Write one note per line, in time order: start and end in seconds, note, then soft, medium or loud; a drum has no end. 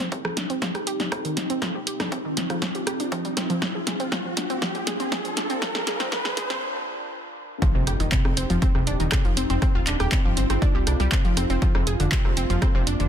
0.00 0.11 C4 loud
0.00 3.58 C4 medium
0.00 3.58 D#4 medium
0.00 1.60 G4 medium
0.00 riser medium
0.12 0.18 C4 medium
0.12 kick loud
0.12 closed hi-hat soft
0.25 0.33 F1 medium
0.25 0.34 F3 medium
0.25 cross-stick medium
0.37 0.45 F1 medium
0.37 0.47 D4 medium
0.37 snare soft
0.37 closed hi-hat loud
0.50 0.58 F1 medium
0.50 0.59 C4 loud
0.50 closed hi-hat soft
0.62 0.72 F4 loud
0.62 kick loud
0.62 snare medium
0.62 closed hi-hat soft
0.75 0.83 D#1 medium
0.75 0.80 G4 medium
0.75 cross-stick soft
0.75 closed hi-hat soft
0.87 0.95 D#1 medium
0.87 0.97 G4 loud
0.87 closed hi-hat loud
1.00 1.08 D#1 medium
1.00 1.05 D4 medium
1.00 snare soft
1.00 closed hi-hat soft
1.12 1.18 C4 medium
1.12 kick loud
1.12 cross-stick medium
1.12 closed hi-hat soft
1.25 1.34 D#3 loud
1.25 closed hi-hat soft
1.37 1.45 F1 loud
1.37 1.43 F3 medium
1.37 snare medium
1.37 closed hi-hat loud
1.50 1.58 F1 medium
1.50 1.59 C4 loud
1.50 closed hi-hat soft
1.62 1.72 F4 medium
1.62 7.58 F4 medium
1.62 kick loud
1.62 cross-stick soft
1.62 snare medium
1.62 closed hi-hat soft
1.75 1.83 D#1 medium
1.75 1.80 G4 medium
1.87 1.95 D#1 loud
1.87 1.97 G4 loud
1.87 closed hi-hat loud
2.00 2.08 D#1 medium
2.00 2.05 D4 medium
2.00 cross-stick medium
2.00 snare medium
2.00 closed hi-hat soft
2.12 2.18 C4 medium
2.12 kick loud
2.12 closed hi-hat soft
2.25 2.33 G1 medium
2.25 2.34 D#3 loud
2.37 2.45 G1 medium
2.37 2.43 F3 medium
2.37 snare medium
2.37 closed hi-hat loud
2.50 2.58 G1 medium
2.50 2.59 F3 loud
2.50 cross-stick soft
2.50 closed hi-hat soft
2.62 2.74 F3 medium
2.62 kick loud
2.62 snare medium
2.62 closed hi-hat soft
2.75 2.83 C2 medium
2.75 2.80 G4 medium
2.75 closed hi-hat soft
2.87 2.95 C2 loud
2.87 2.97 G4 loud
2.87 cross-stick medium
2.87 closed hi-hat loud
3.00 3.08 C2 medium
3.00 3.05 D4 medium
3.00 closed hi-hat soft
3.12 3.22 F3 loud
3.12 kick loud
3.12 closed hi-hat soft
3.25 3.33 F1 medium
3.25 3.34 G3 loud
3.25 closed hi-hat soft
3.37 3.47 C4 loud
3.37 cross-stick soft
3.37 snare medium
3.37 closed hi-hat loud
3.50 3.55 F3 loud
3.50 closed hi-hat soft
3.62 3.68 F3 medium
3.62 7.58 A#3 medium
3.62 7.58 D4 medium
3.62 kick loud
3.62 snare medium
3.62 closed hi-hat soft
3.75 3.80 G#4 medium
3.87 3.95 F1 loud
3.87 3.97 G#4 medium
3.87 snare medium
3.87 closed hi-hat loud
4.00 4.08 F1 medium
4.00 4.11 C4 loud
4.00 closed hi-hat soft
4.12 4.18 C4 medium
4.12 kick loud
4.12 snare medium
4.12 closed hi-hat soft
4.25 4.34 F3 medium
4.37 4.47 D4 medium
4.37 snare medium
4.37 closed hi-hat loud
4.50 4.58 F1 medium
4.50 4.59 C4 loud
4.50 closed hi-hat soft
4.62 4.68 F3 medium
4.62 kick loud
4.62 snare medium
4.62 closed hi-hat soft
4.75 4.80 G#4 medium
4.75 closed hi-hat soft
4.87 4.97 G#4 loud
4.87 snare medium
4.87 closed hi-hat loud
5.00 5.11 C4 loud
5.00 closed hi-hat soft
5.12 5.18 C4 medium
5.12 kick loud
5.12 snare medium
5.12 closed hi-hat soft
5.25 5.34 F3 medium
5.25 closed hi-hat soft
5.37 5.47 D4 medium
5.37 snare medium
5.37 closed hi-hat loud
5.50 5.59 C4 loud
5.50 closed hi-hat soft
5.62 5.68 F3 medium
5.62 kick loud
5.62 snare medium
5.62 closed hi-hat soft
5.75 5.80 G#4 medium
5.75 snare medium
5.87 5.97 G#4 loud
5.87 snare medium
5.87 closed hi-hat loud
6.00 6.10 C4 loud
6.00 snare medium
6.00 closed hi-hat soft
6.12 6.18 F3 medium
6.12 kick loud
6.12 snare loud
6.12 closed hi-hat soft
6.25 6.30 G#4 medium
6.25 snare medium
6.37 6.47 G#4 loud
6.37 snare loud
6.37 closed hi-hat loud
6.50 6.58 G1 medium
6.50 6.60 C4 loud
6.50 snare medium
6.50 closed hi-hat soft
7.62 7.72 F3 medium
7.62 11.58 C4 medium
7.62 11.58 D#4 medium
7.62 7.72 F4 medium
7.62 9.60 G4 medium
7.62 kick loud
7.62 closed hi-hat soft
7.62 impact medium
7.75 7.83 F1 medium
7.75 7.84 C3 loud
7.75 7.84 C4 medium
7.87 7.95 F1 loud
7.87 7.93 G4 medium
7.87 7.93 G5 medium
7.87 cross-stick soft
7.87 closed hi-hat loud
8.00 8.08 F1 medium
8.00 8.09 D#3 medium
8.00 8.09 D#4 medium
8.00 closed hi-hat soft
8.12 8.22 C3 medium
8.12 8.22 C4 medium
8.12 kick loud
8.12 clap loud
8.12 closed hi-hat soft
8.25 8.33 F1 medium
8.25 8.34 C3 loud
8.25 8.34 C4 medium
8.25 cross-stick medium
8.37 8.45 F1 loud
8.37 8.43 C4 medium
8.37 8.43 C5 medium
8.37 closed hi-hat loud
8.50 8.58 F1 medium
8.50 8.59 F3 medium
8.50 8.59 F4 medium
8.50 closed hi-hat soft
8.62 8.72 C4 medium
8.62 8.72 C5 medium
8.62 kick loud
8.62 closed hi-hat medium
8.75 8.83 D#1 medium
8.75 8.84 C3 loud
8.75 8.84 C4 medium
8.75 cross-stick soft
8.87 8.95 D#1 loud
8.87 8.97 D4 medium
8.87 8.97 D5 medium
8.87 closed hi-hat loud
9.00 9.08 D#1 medium
9.00 9.09 D#3 medium
9.00 9.09 D#4 medium
9.00 closed hi-hat soft
9.12 9.22 C3 medium
9.12 9.22 C4 medium
9.12 kick loud
9.12 cross-stick medium
9.12 clap loud
9.12 closed hi-hat soft
9.25 9.33 F1 medium
9.25 9.36 F3 medium
9.25 9.36 F4 medium
9.25 closed hi-hat soft
9.37 9.45 F1 loud
9.37 9.43 C4 medium
9.37 9.43 C5 medium
9.37 closed hi-hat loud
9.50 9.58 F1 loud
9.50 9.59 C4 medium
9.50 9.59 C5 medium
9.50 closed hi-hat soft
9.62 9.72 C4 medium
9.62 13.08 F4 medium
9.62 9.72 C5 medium
9.62 kick loud
9.62 cross-stick soft
9.62 closed hi-hat soft
9.75 9.83 D#1 medium
9.75 9.81 F4 medium
9.75 9.81 F5 medium
9.87 9.95 D#1 loud
9.87 9.97 D4 medium
9.87 9.97 D5 medium
9.87 clap medium
9.87 closed hi-hat loud
10.00 10.08 D#1 medium
10.00 10.09 G4 medium
10.00 10.09 G5 medium
10.00 cross-stick medium
10.00 closed hi-hat soft
10.12 10.22 C3 medium
10.12 10.22 C4 medium
10.12 kick loud
10.12 clap loud
10.12 closed hi-hat soft
10.25 10.33 G1 medium
10.25 10.36 F3 medium
10.25 10.36 F4 medium
10.37 10.45 G1 loud
10.37 10.43 C4 medium
10.37 10.43 C5 medium
10.37 closed hi-hat loud
10.50 10.58 G1 loud
10.50 10.59 C4 medium
10.50 10.59 C5 medium
10.50 cross-stick soft
10.50 closed hi-hat soft
10.62 10.74 D4 medium
10.62 10.74 D5 medium
10.62 kick loud
10.62 closed hi-hat soft
10.75 10.83 C2 medium
10.75 10.84 G3 medium
10.75 10.84 G4 medium
10.87 10.95 C2 loud
10.87 10.93 D4 medium
10.87 10.93 D5 medium
10.87 cross-stick medium
10.87 closed hi-hat loud
11.00 11.08 C2 medium
11.00 11.05 G3 loud
11.00 11.05 G4 medium
11.00 closed hi-hat soft
11.12 11.22 C3 medium
11.12 11.22 C4 medium
11.12 kick loud
11.12 clap loud
11.12 closed hi-hat soft
11.25 11.33 F1 medium
11.25 11.36 F3 medium
11.25 11.36 F4 medium
11.25 closed hi-hat soft
11.37 11.45 F1 loud
11.37 11.43 C4 medium
11.37 11.43 C5 medium
11.37 cross-stick soft
11.37 closed hi-hat loud
11.50 11.58 F1 medium
11.50 11.59 C4 medium
11.50 11.59 C5 medium
11.50 closed hi-hat soft
11.62 11.72 F3 medium
11.62 13.08 A#3 medium
11.62 13.08 D4 medium
11.62 11.72 F4 medium
11.62 kick loud
11.62 closed hi-hat soft
11.75 11.83 F1 medium
11.75 11.84 C3 loud
11.75 11.84 C4 medium
11.75 cross-stick medium
11.87 11.95 F1 loud
11.87 11.93 G#4 medium
11.87 11.93 G#5 soft
11.87 closed hi-hat loud
12.00 12.07 F1 loud
12.00 12.09 D3 medium
12.00 12.09 D4 medium
12.00 closed hi-hat soft
12.12 12.22 C3 medium
12.12 12.22 C4 medium
12.12 kick loud
12.12 clap loud
12.12 closed hi-hat soft
12.25 12.33 F1 medium
12.25 12.34 C3 loud
12.25 12.34 C4 medium
12.25 cross-stick medium
12.37 12.45 F1 loud
12.37 12.43 C4 medium
12.37 12.43 C5 medium
12.37 closed hi-hat loud
12.50 12.57 F1 loud
12.50 12.59 F3 medium
12.50 12.59 F4 medium
12.50 closed hi-hat soft
12.62 12.72 C4 medium
12.62 12.72 C5 medium
12.62 kick loud
12.62 cross-stick medium
12.62 closed hi-hat soft
12.75 12.83 F1 medium
12.75 12.84 C3 loud
12.75 12.84 C4 medium
12.87 12.95 F1 loud
12.87 12.97 D4 medium
12.87 12.97 D5 medium
12.87 closed hi-hat loud
13.00 13.08 F1 loud
13.00 13.08 D3 medium
13.00 13.08 D4 medium
13.00 closed hi-hat soft